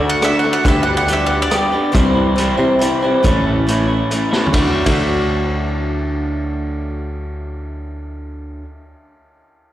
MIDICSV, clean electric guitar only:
0, 0, Header, 1, 2, 480
1, 0, Start_track
1, 0, Key_signature, 2, "major"
1, 0, Tempo, 432277
1, 718, Time_signature, 3, 2, 24, 8
1, 10802, End_track
2, 0, Start_track
2, 0, Title_t, "Clean electric guitar"
2, 0, Program_c, 0, 27
2, 0, Note_on_c, 0, 50, 74
2, 0, Note_on_c, 0, 66, 68
2, 17, Note_on_c, 0, 62, 57
2, 34, Note_on_c, 0, 57, 50
2, 225, Note_off_c, 0, 50, 0
2, 237, Note_off_c, 0, 57, 0
2, 239, Note_on_c, 0, 50, 63
2, 248, Note_off_c, 0, 62, 0
2, 251, Note_on_c, 0, 57, 73
2, 259, Note_off_c, 0, 66, 0
2, 261, Note_on_c, 0, 62, 70
2, 272, Note_on_c, 0, 66, 66
2, 466, Note_off_c, 0, 66, 0
2, 479, Note_on_c, 0, 66, 70
2, 480, Note_off_c, 0, 62, 0
2, 493, Note_on_c, 0, 62, 73
2, 494, Note_off_c, 0, 57, 0
2, 501, Note_off_c, 0, 50, 0
2, 507, Note_on_c, 0, 57, 68
2, 514, Note_on_c, 0, 50, 63
2, 697, Note_off_c, 0, 50, 0
2, 704, Note_off_c, 0, 66, 0
2, 710, Note_on_c, 0, 50, 73
2, 711, Note_off_c, 0, 62, 0
2, 719, Note_off_c, 0, 57, 0
2, 723, Note_on_c, 0, 55, 78
2, 732, Note_on_c, 0, 59, 82
2, 745, Note_on_c, 0, 67, 94
2, 948, Note_off_c, 0, 67, 0
2, 952, Note_on_c, 0, 67, 57
2, 955, Note_off_c, 0, 59, 0
2, 969, Note_on_c, 0, 59, 57
2, 984, Note_off_c, 0, 55, 0
2, 988, Note_on_c, 0, 55, 50
2, 1177, Note_off_c, 0, 50, 0
2, 1191, Note_on_c, 0, 50, 70
2, 1193, Note_off_c, 0, 55, 0
2, 1203, Note_off_c, 0, 59, 0
2, 1206, Note_on_c, 0, 55, 83
2, 1211, Note_off_c, 0, 67, 0
2, 1216, Note_on_c, 0, 59, 84
2, 1224, Note_on_c, 0, 67, 76
2, 1423, Note_off_c, 0, 67, 0
2, 1436, Note_on_c, 0, 67, 62
2, 1444, Note_off_c, 0, 59, 0
2, 1457, Note_off_c, 0, 55, 0
2, 1457, Note_on_c, 0, 59, 57
2, 1471, Note_on_c, 0, 55, 57
2, 1656, Note_off_c, 0, 50, 0
2, 1670, Note_on_c, 0, 50, 61
2, 1676, Note_off_c, 0, 55, 0
2, 1683, Note_off_c, 0, 59, 0
2, 1690, Note_on_c, 0, 55, 61
2, 1695, Note_off_c, 0, 67, 0
2, 1697, Note_on_c, 0, 59, 68
2, 1708, Note_on_c, 0, 67, 79
2, 1896, Note_off_c, 0, 67, 0
2, 1910, Note_on_c, 0, 67, 68
2, 1911, Note_off_c, 0, 59, 0
2, 1923, Note_off_c, 0, 55, 0
2, 1924, Note_on_c, 0, 59, 78
2, 1930, Note_off_c, 0, 50, 0
2, 1936, Note_on_c, 0, 55, 70
2, 1943, Note_on_c, 0, 50, 56
2, 2139, Note_off_c, 0, 67, 0
2, 2142, Note_on_c, 0, 48, 84
2, 2147, Note_off_c, 0, 59, 0
2, 2148, Note_off_c, 0, 55, 0
2, 2149, Note_off_c, 0, 50, 0
2, 2153, Note_on_c, 0, 52, 78
2, 2162, Note_on_c, 0, 55, 80
2, 2168, Note_on_c, 0, 60, 91
2, 2172, Note_on_c, 0, 64, 92
2, 2377, Note_off_c, 0, 64, 0
2, 2381, Note_on_c, 0, 64, 65
2, 2387, Note_off_c, 0, 60, 0
2, 2400, Note_on_c, 0, 60, 54
2, 2403, Note_off_c, 0, 55, 0
2, 2416, Note_on_c, 0, 55, 46
2, 2611, Note_off_c, 0, 48, 0
2, 2625, Note_on_c, 0, 48, 76
2, 2629, Note_off_c, 0, 55, 0
2, 2631, Note_off_c, 0, 52, 0
2, 2635, Note_on_c, 0, 52, 78
2, 2639, Note_off_c, 0, 60, 0
2, 2642, Note_off_c, 0, 64, 0
2, 2642, Note_on_c, 0, 55, 84
2, 2652, Note_on_c, 0, 60, 86
2, 2655, Note_on_c, 0, 64, 98
2, 2843, Note_off_c, 0, 64, 0
2, 2856, Note_on_c, 0, 64, 58
2, 2867, Note_off_c, 0, 60, 0
2, 2880, Note_on_c, 0, 60, 54
2, 2882, Note_off_c, 0, 55, 0
2, 2895, Note_on_c, 0, 55, 54
2, 3084, Note_off_c, 0, 52, 0
2, 3096, Note_off_c, 0, 55, 0
2, 3098, Note_on_c, 0, 52, 56
2, 3105, Note_off_c, 0, 60, 0
2, 3110, Note_on_c, 0, 55, 70
2, 3111, Note_off_c, 0, 48, 0
2, 3114, Note_off_c, 0, 64, 0
2, 3118, Note_on_c, 0, 60, 70
2, 3127, Note_on_c, 0, 64, 71
2, 3343, Note_off_c, 0, 64, 0
2, 3349, Note_off_c, 0, 60, 0
2, 3355, Note_off_c, 0, 55, 0
2, 3357, Note_on_c, 0, 64, 73
2, 3362, Note_on_c, 0, 60, 68
2, 3368, Note_off_c, 0, 52, 0
2, 3368, Note_on_c, 0, 55, 63
2, 3381, Note_on_c, 0, 52, 66
2, 3389, Note_on_c, 0, 48, 60
2, 3582, Note_off_c, 0, 64, 0
2, 3585, Note_off_c, 0, 60, 0
2, 3588, Note_off_c, 0, 55, 0
2, 3589, Note_off_c, 0, 52, 0
2, 3590, Note_off_c, 0, 48, 0
2, 3594, Note_on_c, 0, 45, 79
2, 3603, Note_on_c, 0, 52, 79
2, 3611, Note_on_c, 0, 57, 82
2, 3615, Note_on_c, 0, 61, 86
2, 3625, Note_on_c, 0, 64, 77
2, 3823, Note_off_c, 0, 64, 0
2, 3837, Note_on_c, 0, 64, 59
2, 3843, Note_off_c, 0, 61, 0
2, 3856, Note_on_c, 0, 61, 56
2, 3859, Note_off_c, 0, 57, 0
2, 3873, Note_on_c, 0, 57, 51
2, 4062, Note_off_c, 0, 45, 0
2, 4070, Note_off_c, 0, 52, 0
2, 4076, Note_on_c, 0, 45, 72
2, 4083, Note_on_c, 0, 52, 76
2, 4084, Note_off_c, 0, 57, 0
2, 4089, Note_off_c, 0, 61, 0
2, 4097, Note_on_c, 0, 57, 74
2, 4099, Note_off_c, 0, 64, 0
2, 4102, Note_on_c, 0, 61, 82
2, 4112, Note_on_c, 0, 64, 83
2, 4288, Note_off_c, 0, 64, 0
2, 4301, Note_on_c, 0, 64, 62
2, 4314, Note_off_c, 0, 61, 0
2, 4324, Note_off_c, 0, 57, 0
2, 4327, Note_on_c, 0, 61, 52
2, 4338, Note_on_c, 0, 57, 46
2, 4536, Note_off_c, 0, 52, 0
2, 4549, Note_off_c, 0, 57, 0
2, 4549, Note_on_c, 0, 52, 57
2, 4557, Note_off_c, 0, 45, 0
2, 4559, Note_off_c, 0, 61, 0
2, 4563, Note_on_c, 0, 57, 59
2, 4570, Note_off_c, 0, 64, 0
2, 4573, Note_on_c, 0, 61, 63
2, 4584, Note_on_c, 0, 64, 74
2, 4773, Note_off_c, 0, 64, 0
2, 4782, Note_off_c, 0, 61, 0
2, 4787, Note_on_c, 0, 64, 71
2, 4791, Note_off_c, 0, 57, 0
2, 4795, Note_on_c, 0, 61, 66
2, 4799, Note_off_c, 0, 52, 0
2, 4804, Note_on_c, 0, 57, 63
2, 4812, Note_on_c, 0, 52, 58
2, 4819, Note_on_c, 0, 45, 64
2, 5015, Note_off_c, 0, 52, 0
2, 5018, Note_off_c, 0, 64, 0
2, 5020, Note_on_c, 0, 50, 81
2, 5022, Note_off_c, 0, 61, 0
2, 5026, Note_off_c, 0, 57, 0
2, 5034, Note_off_c, 0, 45, 0
2, 5039, Note_on_c, 0, 57, 76
2, 5050, Note_on_c, 0, 62, 78
2, 5065, Note_on_c, 0, 66, 95
2, 5383, Note_off_c, 0, 50, 0
2, 5387, Note_on_c, 0, 50, 74
2, 5394, Note_off_c, 0, 57, 0
2, 5399, Note_on_c, 0, 57, 72
2, 5412, Note_off_c, 0, 62, 0
2, 5416, Note_on_c, 0, 62, 69
2, 5422, Note_off_c, 0, 66, 0
2, 5427, Note_on_c, 0, 66, 89
2, 9578, Note_off_c, 0, 50, 0
2, 9584, Note_off_c, 0, 57, 0
2, 9593, Note_off_c, 0, 62, 0
2, 9598, Note_off_c, 0, 66, 0
2, 10802, End_track
0, 0, End_of_file